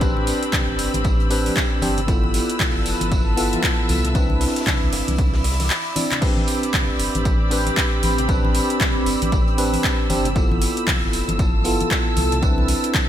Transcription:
Already playing: A1 C4 G4 D5 B5 E6
0.00 C4 D4 G4 B4, kick, closed hi-hat, tambourine
0.17 high conga
0.27 open hi-hat, tambourine
0.43 closed hi-hat
0.53 kick, snare, clap, closed hi-hat, tambourine, high conga, low conga
0.69 A1
0.79 G1, open hi-hat, tambourine
0.94 A1, closed hi-hat, high conga
1.04 kick, closed hi-hat, tambourine
1.20 closed hi-hat
1.30 C4 D4 G4 B4, open hi-hat, tambourine
1.46 open hi-hat, high conga
1.56 kick, snare, clap, closed hi-hat, tambourine
1.82 G1 C4 D4 G4 C5, snare, open hi-hat, tambourine, high conga
1.98 closed hi-hat, low conga
2.07 B3 E4 F4 A4 B4, kick, closed hi-hat, tambourine
2.24 high conga
2.34 snare, open hi-hat, tambourine
2.50 closed hi-hat
2.54 F3
2.59 kick, snare, clap, closed hi-hat, open hi-hat, high conga, low conga
2.66 A5
2.75 G1
2.86 F1, open hi-hat, tambourine
3.01 G1 E5, closed hi-hat, high conga
3.12 kick, closed hi-hat, tambourine
3.37 B3 E4 F4 A4, open hi-hat, tambourine
3.53 closed hi-hat, high conga
3.63 kick, snare, clap, closed hi-hat, tambourine
3.89 C2, open hi-hat, tambourine, high conga
4.04 snare, closed hi-hat, low conga
4.14 C4 D4 E4 B4, kick, closed hi-hat, tambourine
4.30 high conga
4.41 snare, open hi-hat
4.48 snare, open hi-hat
4.56 D5 B5, snare, closed hi-hat, open hi-hat
4.61 snare, open hi-hat
4.66 kick, snare, clap, closed hi-hat, tambourine, high conga, low conga
4.82 C2
4.93 G1, snare, open hi-hat
5.08 C2, closed hi-hat, high conga
5.19 kick, closed hi-hat, tambourine
5.33 snare, open hi-hat
5.44 snare, open hi-hat
5.52 snare, open hi-hat
5.60 snare, open hi-hat, high conga
5.65 snare, open hi-hat
5.70 snare, clap, closed hi-hat, open hi-hat
5.96 C4 D4 E4 D5, open hi-hat, tambourine, high conga
6.12 clap, closed hi-hat, low conga
6.21 C4 D4 G4 B4 G5 B5 D6 E6, kick, closed hi-hat, crash, tambourine
6.31 G4
6.37 high conga
6.47 snare, open hi-hat, tambourine
6.63 closed hi-hat
6.74 kick, snare, clap, closed hi-hat, open hi-hat, high conga, low conga
6.89 A1
6.99 G1, open hi-hat, tambourine
7.15 A1, closed hi-hat, high conga
7.25 kick, closed hi-hat, tambourine
7.51 C4 D4 G4 B4, open hi-hat, tambourine
7.67 closed hi-hat, high conga
7.77 kick, snare, clap, closed hi-hat, tambourine
8.03 A1, open hi-hat, tambourine, high conga
8.18 snare, closed hi-hat, low conga
8.28 C4 D4 G4 B4, kick, closed hi-hat, tambourine
8.45 high conga
8.55 open hi-hat, tambourine
8.70 closed hi-hat
8.80 kick, snare, clap, closed hi-hat, tambourine, high conga, low conga
8.96 A1
9.06 G1, open hi-hat, tambourine
9.22 A1, closed hi-hat, high conga
9.32 kick, closed hi-hat, tambourine
9.48 closed hi-hat
9.58 C4 D4 G4 B4, open hi-hat, tambourine
9.73 open hi-hat, high conga
9.84 kick, snare, clap, tambourine
10.09 G1 C4 D4 G4 C5, snare, open hi-hat, tambourine, high conga
10.25 closed hi-hat, low conga
10.35 B3 E4 F4 A4 E6, kick, closed hi-hat, tambourine
10.51 high conga
10.62 snare, open hi-hat, tambourine
10.77 F3, closed hi-hat
10.87 kick, snare, clap, closed hi-hat, open hi-hat, high conga, low conga
11.03 G1
11.13 F1, open hi-hat, tambourine
11.28 G1 A5 E6, closed hi-hat, high conga
11.39 kick, closed hi-hat, tambourine
11.64 B3 E4 F4 A4, open hi-hat, tambourine
11.81 closed hi-hat, high conga
11.91 kick, snare, clap, closed hi-hat, tambourine
12.16 C2, open hi-hat, tambourine, high conga
12.32 snare, closed hi-hat, low conga
12.42 C4 D4 E4 B4 E5 D6, kick, closed hi-hat, tambourine
12.58 high conga
12.68 open hi-hat, tambourine
12.84 closed hi-hat
12.94 kick, snare, clap, closed hi-hat, tambourine, high conga, low conga

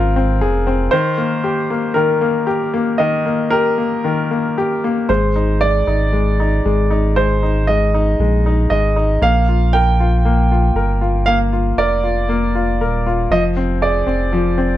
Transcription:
Already playing: G#1 F3 C4 F4 G#4 A#4
0.16 C4
0.41 F1 G#4
0.67 C4
0.91 D#3 C5
1.18 A#3
1.44 G4
1.70 A#3
1.94 D#3 A#4
2.21 A#3
2.47 G4
2.74 A#3
2.98 D#3 D#5
3.26 A#3
3.50 G4 A#4
3.78 A#3
4.04 D#3
4.31 A#3
4.58 G4
4.84 A#3
5.09 G#1 G#3 C5
5.36 D#4
5.61 G#3 D5
5.87 G#1 D#4
6.13 G#3
6.40 D#4
6.65 G#1 G#3
6.91 D#4
7.16 G#3 C5
7.43 D#4
7.67 G#3 D#5
7.94 D#4
8.19 A#1 G#3
8.46 D#4
8.70 G#1 G#3 D#5
8.96 D#4
9.21 A#1 A#3 F5
9.49 F4
9.73 A#4 G5
10.00 F4
10.25 A#3
10.52 F4
10.75 G1 A#4
11.01 F4
11.26 A#3 F5
11.53 F4
11.77 F1 A#4 D5
12.04 F4
12.29 A#3
12.55 F4
12.80 D#1 A#4
13.06 F4
13.30 F1 F3 D#5
13.57 C4
13.82 G#4 D5
14.07 F1 C4
14.33 F3
14.58 C4

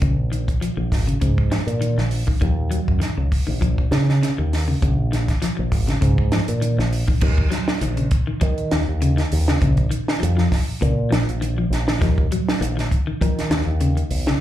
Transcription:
0.02 A#1 C#3, kick, closed hi-hat
0.32 D#3, closed hi-hat
0.48 kick, closed hi-hat
0.61 F3, muted fingered electric bass stroke, closed hi-hat
0.77 A#1 F3
0.92 G#1, kick, snare, open hi-hat
1.07 C#3, closed hi-hat
1.21 G#2 C#3, kick, closed hi-hat
1.38 kick
1.51 F3, snare, closed hi-hat
1.67 A#2, closed hi-hat
1.81 D#3, closed hi-hat
1.98 A#1 F3, snare
2.11 open hi-hat
2.27 D#3, kick
2.41 D#2 F3, kick, closed hi-hat
2.71 F#3, closed hi-hat
2.88 F#2, kick
3.00 D#3, snare, closed hi-hat
3.17 C#2 C#3
3.32 kick, open hi-hat
3.47 A#1 D#3
3.61 F3, kick, closed hi-hat
3.78 kick
3.91 C#3 D#3, snare, closed hi-hat
4.09 snare
4.23 C#3, snare, closed hi-hat
4.38 D#2 D#3
4.53 snare, open hi-hat
4.68 C#3
4.82 A#1 C#3, kick, closed hi-hat
5.12 D#3, snare, closed hi-hat
5.28 kick, snare, closed hi-hat
5.42 F3, muted fingered electric bass stroke, snare, closed hi-hat
5.57 A#1 F3
5.72 G#1, kick, open hi-hat
5.87 C#3, snare, closed hi-hat
6.01 G#2 C#3, kick, closed hi-hat
6.18 kick
6.32 F3, snare, closed hi-hat
6.48 A#2, closed hi-hat
6.61 D#3, closed hi-hat
6.78 A#1 F3, snare
6.93 open hi-hat
7.08 D#3, kick
7.21 D#2, muted clean electric guitar stroke, kick, crash
7.38 kick
7.50 F#3, snare, closed hi-hat
7.68 snare
7.81 A#1 D#3, closed hi-hat
7.97 C#3, closed hi-hat
8.11 kick, closed hi-hat
8.27 D#3
8.41 D#3, muted clean electric guitar stroke, kick, closed hi-hat
8.58 closed hi-hat
8.71 D#2 D#3, snare, closed hi-hat
8.88 D#2
9.02 C#3, closed hi-hat
9.17 D#3, snare, closed hi-hat
9.32 D#2, open hi-hat
9.48 C#3, snare, closed hi-hat
9.61 A#1 C#3, kick, closed hi-hat
9.77 kick, closed hi-hat
9.91 D#3, closed hi-hat
10.08 snare
10.20 F2 F3, closed hi-hat
10.37 F3, snare
10.52 kick, snare, open hi-hat
10.81 A#2 C#3, kick, closed hi-hat
11.11 A#1 F3, snare, closed hi-hat
11.28 A#1, closed hi-hat
11.41 D#3, closed hi-hat
11.58 F3
11.70 A#1, snare, closed hi-hat
11.88 D#3, snare
12.01 D#2 F3, kick, snare, closed hi-hat
12.18 kick
12.32 F#3, closed hi-hat
12.49 snare
12.60 A#1 D#3, closed hi-hat
12.77 D#3, snare, closed hi-hat
12.91 kick, closed hi-hat
13.07 D#3
13.21 D#3 F3, kick, closed hi-hat
13.39 snare, closed hi-hat
13.50 D#2 D#3, snare, closed hi-hat
13.66 D#2
13.81 C#3, closed hi-hat
13.97 D#3, closed hi-hat
14.11 B1, open hi-hat
14.27 C#3, snare, closed hi-hat

